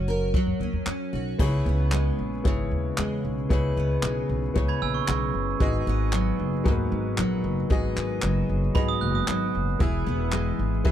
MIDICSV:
0, 0, Header, 1, 6, 480
1, 0, Start_track
1, 0, Tempo, 525855
1, 1273, Time_signature, 4, 2, 24, 8
1, 9964, End_track
2, 0, Start_track
2, 0, Title_t, "Glockenspiel"
2, 0, Program_c, 0, 9
2, 4276, Note_on_c, 0, 92, 69
2, 4281, Note_on_c, 0, 83, 52
2, 4390, Note_off_c, 0, 92, 0
2, 4393, Note_off_c, 0, 83, 0
2, 4400, Note_on_c, 0, 88, 81
2, 4405, Note_on_c, 0, 80, 62
2, 4512, Note_off_c, 0, 88, 0
2, 4513, Note_on_c, 0, 85, 61
2, 4515, Note_off_c, 0, 80, 0
2, 5084, Note_off_c, 0, 85, 0
2, 7986, Note_on_c, 0, 83, 65
2, 8102, Note_off_c, 0, 83, 0
2, 8111, Note_on_c, 0, 87, 74
2, 8225, Note_off_c, 0, 87, 0
2, 8227, Note_on_c, 0, 90, 79
2, 8343, Note_off_c, 0, 90, 0
2, 8352, Note_on_c, 0, 87, 62
2, 8920, Note_off_c, 0, 87, 0
2, 9964, End_track
3, 0, Start_track
3, 0, Title_t, "Upright piano"
3, 0, Program_c, 1, 0
3, 1265, Note_on_c, 1, 59, 81
3, 1274, Note_on_c, 1, 63, 54
3, 1276, Note_on_c, 1, 68, 71
3, 1283, Note_on_c, 1, 73, 84
3, 1329, Note_on_c, 1, 64, 66
3, 1331, Note_off_c, 1, 63, 0
3, 1437, Control_c, 1, 64, 127
3, 2093, Note_off_c, 1, 59, 0
3, 2098, Note_off_c, 1, 68, 0
3, 2102, Note_off_c, 1, 73, 0
3, 2125, Note_off_c, 1, 64, 0
3, 2224, Note_on_c, 1, 59, 70
3, 2229, Note_on_c, 1, 64, 66
3, 2237, Note_on_c, 1, 68, 64
3, 2243, Note_on_c, 1, 73, 77
3, 3052, Note_off_c, 1, 59, 0
3, 3055, Note_off_c, 1, 64, 0
3, 3059, Note_off_c, 1, 68, 0
3, 3062, Note_off_c, 1, 73, 0
3, 3190, Note_on_c, 1, 59, 76
3, 3197, Note_on_c, 1, 64, 71
3, 3203, Note_on_c, 1, 68, 67
3, 3209, Note_on_c, 1, 73, 77
3, 4015, Note_off_c, 1, 59, 0
3, 4019, Note_off_c, 1, 64, 0
3, 4022, Note_off_c, 1, 68, 0
3, 4025, Note_off_c, 1, 73, 0
3, 4145, Note_on_c, 1, 59, 72
3, 4151, Note_on_c, 1, 64, 62
3, 4160, Note_on_c, 1, 68, 63
3, 4167, Note_on_c, 1, 73, 78
3, 4972, Note_off_c, 1, 59, 0
3, 4975, Note_off_c, 1, 64, 0
3, 4980, Note_off_c, 1, 68, 0
3, 4983, Note_off_c, 1, 73, 0
3, 5110, Note_on_c, 1, 59, 80
3, 5118, Note_on_c, 1, 66, 74
3, 5123, Note_on_c, 1, 68, 73
3, 5127, Control_c, 1, 64, 0
3, 5128, Note_on_c, 1, 75, 76
3, 5283, Control_c, 1, 64, 127
3, 5934, Note_off_c, 1, 59, 0
3, 5938, Note_off_c, 1, 66, 0
3, 5941, Note_off_c, 1, 68, 0
3, 5943, Note_off_c, 1, 75, 0
3, 6062, Note_on_c, 1, 59, 80
3, 6068, Note_on_c, 1, 66, 74
3, 6073, Note_on_c, 1, 68, 66
3, 6079, Note_on_c, 1, 70, 66
3, 6134, Note_off_c, 1, 70, 0
3, 6138, Note_on_c, 1, 71, 86
3, 6889, Note_off_c, 1, 59, 0
3, 6893, Note_off_c, 1, 66, 0
3, 6895, Note_off_c, 1, 68, 0
3, 6928, Note_off_c, 1, 71, 0
3, 7027, Note_on_c, 1, 59, 79
3, 7034, Note_on_c, 1, 66, 66
3, 7037, Note_on_c, 1, 68, 71
3, 7045, Note_on_c, 1, 75, 83
3, 7851, Note_off_c, 1, 59, 0
3, 7854, Note_off_c, 1, 66, 0
3, 7856, Note_off_c, 1, 68, 0
3, 7860, Note_off_c, 1, 75, 0
3, 7983, Note_on_c, 1, 59, 74
3, 7988, Note_on_c, 1, 66, 66
3, 7993, Note_on_c, 1, 68, 69
3, 7999, Note_on_c, 1, 75, 79
3, 8808, Note_off_c, 1, 59, 0
3, 8811, Note_off_c, 1, 66, 0
3, 8813, Note_off_c, 1, 68, 0
3, 8816, Note_off_c, 1, 75, 0
3, 8939, Note_on_c, 1, 59, 75
3, 8946, Note_on_c, 1, 64, 74
3, 8953, Note_on_c, 1, 68, 67
3, 8954, Note_on_c, 1, 76, 83
3, 8963, Control_c, 1, 64, 0
3, 9117, Control_c, 1, 64, 127
3, 9765, Note_off_c, 1, 59, 0
3, 9768, Note_off_c, 1, 64, 0
3, 9772, Note_off_c, 1, 68, 0
3, 9773, Note_off_c, 1, 76, 0
3, 9896, Note_on_c, 1, 59, 77
3, 9903, Note_on_c, 1, 64, 77
3, 9908, Note_on_c, 1, 68, 67
3, 9913, Note_on_c, 1, 76, 85
3, 9964, Note_off_c, 1, 59, 0
3, 9964, Note_off_c, 1, 64, 0
3, 9964, Note_off_c, 1, 68, 0
3, 9964, Note_off_c, 1, 76, 0
3, 9964, End_track
4, 0, Start_track
4, 0, Title_t, "Steel-string acoustic guitar"
4, 0, Program_c, 2, 25
4, 0, Note_on_c, 2, 54, 65
4, 0, Note_on_c, 2, 61, 49
4, 0, Note_on_c, 2, 66, 47
4, 72, Note_on_c, 2, 70, 64
4, 303, Note_off_c, 2, 54, 0
4, 314, Note_on_c, 2, 54, 75
4, 550, Note_off_c, 2, 61, 0
4, 554, Note_on_c, 2, 61, 55
4, 791, Note_off_c, 2, 61, 0
4, 795, Note_on_c, 2, 61, 54
4, 1020, Note_off_c, 2, 66, 0
4, 1030, Note_on_c, 2, 66, 50
4, 1273, Note_on_c, 2, 49, 72
4, 1277, Note_off_c, 2, 70, 0
4, 1281, Note_on_c, 2, 71, 60
4, 1320, Note_off_c, 2, 66, 0
4, 1323, Note_off_c, 2, 54, 0
4, 1514, Note_off_c, 2, 61, 0
4, 1517, Note_on_c, 2, 59, 52
4, 1756, Note_on_c, 2, 56, 53
4, 2225, Note_off_c, 2, 49, 0
4, 2236, Note_on_c, 2, 49, 83
4, 2719, Note_off_c, 2, 56, 0
4, 2723, Note_on_c, 2, 56, 52
4, 3191, Note_off_c, 2, 49, 0
4, 3202, Note_on_c, 2, 49, 66
4, 3205, Note_off_c, 2, 71, 0
4, 3208, Note_on_c, 2, 71, 56
4, 3440, Note_off_c, 2, 59, 0
4, 3444, Note_on_c, 2, 59, 48
4, 3681, Note_off_c, 2, 56, 0
4, 3685, Note_on_c, 2, 56, 60
4, 4147, Note_off_c, 2, 49, 0
4, 4158, Note_on_c, 2, 49, 78
4, 4638, Note_off_c, 2, 56, 0
4, 4642, Note_on_c, 2, 56, 58
4, 5114, Note_on_c, 2, 44, 70
4, 5118, Note_off_c, 2, 71, 0
4, 5122, Note_on_c, 2, 68, 53
4, 5165, Note_off_c, 2, 49, 0
4, 5356, Note_off_c, 2, 59, 0
4, 5359, Note_on_c, 2, 59, 51
4, 5597, Note_off_c, 2, 56, 0
4, 5600, Note_on_c, 2, 54, 54
4, 6067, Note_off_c, 2, 44, 0
4, 6078, Note_on_c, 2, 44, 77
4, 6545, Note_off_c, 2, 54, 0
4, 6556, Note_on_c, 2, 54, 62
4, 7017, Note_off_c, 2, 44, 0
4, 7028, Note_on_c, 2, 44, 65
4, 7032, Note_off_c, 2, 68, 0
4, 7035, Note_on_c, 2, 68, 60
4, 7264, Note_off_c, 2, 59, 0
4, 7268, Note_on_c, 2, 59, 52
4, 7497, Note_off_c, 2, 54, 0
4, 7508, Note_on_c, 2, 54, 55
4, 7975, Note_off_c, 2, 44, 0
4, 7986, Note_on_c, 2, 44, 80
4, 8458, Note_off_c, 2, 54, 0
4, 8469, Note_on_c, 2, 54, 59
4, 8947, Note_on_c, 2, 52, 73
4, 8952, Note_off_c, 2, 68, 0
4, 8956, Note_on_c, 2, 68, 59
4, 8995, Note_off_c, 2, 44, 0
4, 8997, Note_off_c, 2, 54, 0
4, 9184, Note_off_c, 2, 59, 0
4, 9188, Note_on_c, 2, 59, 55
4, 9425, Note_on_c, 2, 56, 62
4, 9890, Note_off_c, 2, 52, 0
4, 9901, Note_on_c, 2, 52, 78
4, 9964, Note_off_c, 2, 52, 0
4, 9964, Note_off_c, 2, 56, 0
4, 9964, Note_off_c, 2, 59, 0
4, 9964, Note_off_c, 2, 68, 0
4, 9964, End_track
5, 0, Start_track
5, 0, Title_t, "Upright bass"
5, 0, Program_c, 3, 32
5, 0, Note_on_c, 3, 30, 97
5, 272, Note_off_c, 3, 30, 0
5, 426, Note_on_c, 3, 42, 75
5, 527, Note_off_c, 3, 42, 0
5, 546, Note_on_c, 3, 39, 74
5, 647, Note_off_c, 3, 39, 0
5, 668, Note_on_c, 3, 40, 70
5, 768, Note_off_c, 3, 40, 0
5, 786, Note_on_c, 3, 42, 84
5, 887, Note_off_c, 3, 42, 0
5, 1033, Note_on_c, 3, 35, 82
5, 1230, Note_off_c, 3, 35, 0
5, 1272, Note_on_c, 3, 37, 90
5, 1470, Note_off_c, 3, 37, 0
5, 1514, Note_on_c, 3, 37, 92
5, 1908, Note_off_c, 3, 37, 0
5, 1995, Note_on_c, 3, 34, 78
5, 2192, Note_off_c, 3, 34, 0
5, 2238, Note_on_c, 3, 32, 79
5, 2434, Note_off_c, 3, 32, 0
5, 2475, Note_on_c, 3, 39, 74
5, 2672, Note_off_c, 3, 39, 0
5, 2719, Note_on_c, 3, 40, 94
5, 2915, Note_off_c, 3, 40, 0
5, 2963, Note_on_c, 3, 35, 77
5, 3157, Note_off_c, 3, 35, 0
5, 3198, Note_on_c, 3, 37, 101
5, 3394, Note_off_c, 3, 37, 0
5, 3438, Note_on_c, 3, 37, 82
5, 3634, Note_off_c, 3, 37, 0
5, 3676, Note_on_c, 3, 35, 82
5, 3873, Note_off_c, 3, 35, 0
5, 3919, Note_on_c, 3, 35, 85
5, 4115, Note_off_c, 3, 35, 0
5, 4161, Note_on_c, 3, 37, 82
5, 4356, Note_off_c, 3, 37, 0
5, 4397, Note_on_c, 3, 34, 84
5, 4593, Note_off_c, 3, 34, 0
5, 4639, Note_on_c, 3, 35, 89
5, 4835, Note_off_c, 3, 35, 0
5, 4874, Note_on_c, 3, 30, 71
5, 5072, Note_off_c, 3, 30, 0
5, 5117, Note_on_c, 3, 32, 109
5, 5313, Note_off_c, 3, 32, 0
5, 5357, Note_on_c, 3, 32, 85
5, 5750, Note_off_c, 3, 32, 0
5, 5836, Note_on_c, 3, 30, 79
5, 6032, Note_off_c, 3, 30, 0
5, 6076, Note_on_c, 3, 39, 91
5, 6272, Note_off_c, 3, 39, 0
5, 6314, Note_on_c, 3, 32, 93
5, 6511, Note_off_c, 3, 32, 0
5, 6552, Note_on_c, 3, 34, 93
5, 6749, Note_off_c, 3, 34, 0
5, 6791, Note_on_c, 3, 30, 87
5, 6989, Note_off_c, 3, 30, 0
5, 7035, Note_on_c, 3, 32, 88
5, 7231, Note_off_c, 3, 32, 0
5, 7269, Note_on_c, 3, 32, 79
5, 7467, Note_off_c, 3, 32, 0
5, 7511, Note_on_c, 3, 30, 88
5, 7708, Note_off_c, 3, 30, 0
5, 7753, Note_on_c, 3, 30, 81
5, 7949, Note_off_c, 3, 30, 0
5, 7993, Note_on_c, 3, 32, 76
5, 8189, Note_off_c, 3, 32, 0
5, 8233, Note_on_c, 3, 30, 87
5, 8429, Note_off_c, 3, 30, 0
5, 8474, Note_on_c, 3, 32, 82
5, 8669, Note_off_c, 3, 32, 0
5, 8715, Note_on_c, 3, 30, 76
5, 8909, Note_off_c, 3, 30, 0
5, 8950, Note_on_c, 3, 28, 105
5, 9146, Note_off_c, 3, 28, 0
5, 9191, Note_on_c, 3, 28, 96
5, 9583, Note_off_c, 3, 28, 0
5, 9668, Note_on_c, 3, 32, 78
5, 9865, Note_off_c, 3, 32, 0
5, 9909, Note_on_c, 3, 35, 82
5, 9964, Note_off_c, 3, 35, 0
5, 9964, End_track
6, 0, Start_track
6, 0, Title_t, "Drums"
6, 310, Note_on_c, 9, 36, 97
6, 402, Note_off_c, 9, 36, 0
6, 791, Note_on_c, 9, 39, 83
6, 882, Note_off_c, 9, 39, 0
6, 1272, Note_on_c, 9, 36, 104
6, 1273, Note_on_c, 9, 49, 81
6, 1364, Note_off_c, 9, 36, 0
6, 1364, Note_off_c, 9, 49, 0
6, 1751, Note_on_c, 9, 39, 91
6, 1842, Note_off_c, 9, 39, 0
6, 2237, Note_on_c, 9, 36, 94
6, 2328, Note_off_c, 9, 36, 0
6, 2718, Note_on_c, 9, 39, 101
6, 2809, Note_off_c, 9, 39, 0
6, 3198, Note_on_c, 9, 36, 88
6, 3289, Note_off_c, 9, 36, 0
6, 3678, Note_on_c, 9, 39, 96
6, 3770, Note_off_c, 9, 39, 0
6, 4160, Note_on_c, 9, 36, 96
6, 4251, Note_off_c, 9, 36, 0
6, 4639, Note_on_c, 9, 39, 96
6, 4730, Note_off_c, 9, 39, 0
6, 5115, Note_on_c, 9, 36, 100
6, 5207, Note_off_c, 9, 36, 0
6, 5593, Note_on_c, 9, 39, 88
6, 5684, Note_off_c, 9, 39, 0
6, 6075, Note_on_c, 9, 36, 97
6, 6167, Note_off_c, 9, 36, 0
6, 6554, Note_on_c, 9, 39, 94
6, 6645, Note_off_c, 9, 39, 0
6, 7033, Note_on_c, 9, 36, 100
6, 7124, Note_off_c, 9, 36, 0
6, 7279, Note_on_c, 9, 39, 76
6, 7370, Note_off_c, 9, 39, 0
6, 7505, Note_on_c, 9, 39, 99
6, 7597, Note_off_c, 9, 39, 0
6, 7992, Note_on_c, 9, 36, 108
6, 8083, Note_off_c, 9, 36, 0
6, 8470, Note_on_c, 9, 39, 100
6, 8562, Note_off_c, 9, 39, 0
6, 8948, Note_on_c, 9, 36, 103
6, 9040, Note_off_c, 9, 36, 0
6, 9423, Note_on_c, 9, 39, 83
6, 9514, Note_off_c, 9, 39, 0
6, 9907, Note_on_c, 9, 36, 106
6, 9964, Note_off_c, 9, 36, 0
6, 9964, End_track
0, 0, End_of_file